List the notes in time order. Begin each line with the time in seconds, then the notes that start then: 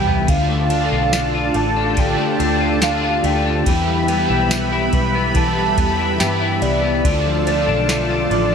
Already playing: C2 E3 G3 B3 E4 G4 B4 E5 G5 B5
0.07 B3, floor tom
0.27 D2 D3 A3 D4 F4 A4 D5 F5 A5, kick, ride
0.49 A3
0.56 G4
0.69 D4 F4, ride
0.75 A3
0.91 B1 F4
1.13 D4, snare, ride, tambourine
1.34 F4
1.54 A1 A3 A5, ride
1.76 D4
1.96 D3 A3 D4 G5, kick, ride
2.01 F4
2.19 A3
2.40 D2 D4, ride
2.61 F4
2.80 D3 A3 D4 F5, snare, ride, tambourine
2.85 F4
3.03 F4
3.24 D2 A3 G5, ride
3.46 D4
3.65 E2 E3 G3 B3 E4 G4 B4 E5 G5 B5, kick, ride
3.88 G3
4.06 B3 E4, ride
4.12 G3
4.30 B1 E4
4.51 B3, snare, ride, tambourine
4.72 E4
4.93 B1 G3 B5, kick, ride
5.15 B3
5.33 E3 G3 A5, kick, ride
5.37 B3 E4
5.57 G3
5.78 E2 B3, kick, ride
5.99 E4
6.18 G2 E3 G3 B3 G5, snare, ride, tambourine
6.23 B3 E4
6.41 E4
6.62 C2 G3 D5, ride
6.84 B3
7.04 D2 D3 F3 A3 D4 F4 A4 D5 A5, kick, ride
7.26 F3
7.46 A3 D4, ride
7.51 F3
7.68 B1 D4
7.89 A3, snare, ride, tambourine
8.10 D4
8.31 A1 F3 D5, ride